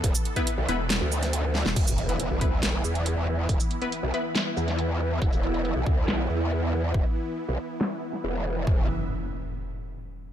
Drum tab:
CC |----------------|x---------------|----------------|----------------|
HH |x-xxx-x-x--xx---|x-xxx-x-x--xx---|x-xxx-x-x--xx---|x-xxx-x-x--xx---|
SH |-x--------x-----|-x--------x-----|-x--------x-----|-x--------x-----|
SD |--------o--o--oo|--------o-------|--------o--o----|--------o-------|
BD |o--o------------|o-----o---------|o---------------|o-----o---------|

CC |----------------|----------------|
HH |x-xxx-x-x--xx---|----------------|
SH |-x--------x-----|----------------|
SD |--------o--o----|----------------|
BD |o---------------|o---------------|